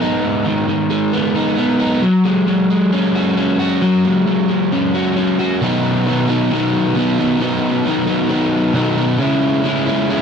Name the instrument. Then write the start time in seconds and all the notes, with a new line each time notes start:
overdriven electric guitar
Already playing: G#3 B3
0.01 D#4
0.24 G#2
0.46 D#3
0.68 D#3
0.90 G#3
1.13 B3
1.35 D#4
1.57 B3
1.80 D#4
2.02 F#3
2.25 G#3
2.48 F#3
2.70 G#3
2.92 C#4
3.15 F#4
3.37 C#4
3.59 F#4
3.82 F#3
4.05 G#3
4.27 F#3
4.49 G#3
4.72 C#4
4.94 F#4
5.16 C#4
5.39 F#4
5.61 B2 D#3 F#3 B3 D#4
6.06 D#3 F#3 B3 D#4
6.28 F#3 B3 D#4
6.51 D#3 F#3 B3 D#4
6.95 B2 D#3 F#3 B3 D#4
7.17 F#3 B3 D#4
7.40 B2 D#3 F#3 B3 D#4
7.84 D#3 F#3 B3 D#4
8.06 F#3 B3 D#4
8.28 D#3 F#3 B3 D#4
8.73 B2 D#3 F#3 B3 D#4
8.96 F#3 B3 D#4
9.18 C#3 G#3 C#4 E4
9.63 C#3 G#3 C#4 E4
9.85 G#3 C#4 E4
10.08 C#3 G#3 C#4 E4